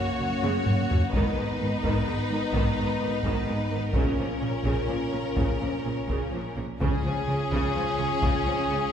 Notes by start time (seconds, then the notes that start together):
Already playing: A#3 C#4 F#4 C#5
0.20 F#1 F#2 F#3
0.43 F#1 F#2 C#3, taiko high
0.66 F#1 F#2 A#3, taiko low-mid
0.90 F#1 F#2 F#3, taiko low
1.13 G#1 G#2 D#3 B3 D#4 B4, taiko
1.37 G#1 G#2 G#3
1.60 G#1 G#2 D#3
1.83 G#1 G#2 D#3, taiko
2.07 G#1 G#2 G#3
2.29 G#1 G#2 D#3
2.53 G#1 G#2 D#3, taiko
2.77 G#1 G#2 G#3
3.01 G#1 G#2 D#3
3.23 G#1 G#2 D#3, taiko
3.47 G#1 G#2 G#3
3.71 G#1 G#2 D#3
3.93 A#1 A#2 C#3 C#4 F4 A#4, taiko
4.17 A#1 A#2 F3
4.41 A#1 A#2 C#3
4.65 A#1 A#2 C#3, taiko
4.88 A#1 A#2 F3
5.12 A#1 A#2 C#3
5.36 A#1 A#2 C#3, taiko
5.60 A#1 A#2 F3
5.85 A#1 A#2 C#3
6.08 A#1 A#2 C#3, taiko
6.32 A#1 A#2 F3
6.56 A#1 A#2 C#3
6.80 C#2 C#3 C#4 F4 G#4, taiko
7.03 C#2 C#3 F3
7.27 C#2 C#3
7.51 C#2 C#3, taiko
7.75 C#2 C#3 F3
7.99 C#2 C#3, taiko mid
8.22 C#2 C#3, taiko
8.46 C#2 C#3 F3
8.70 C#2 C#3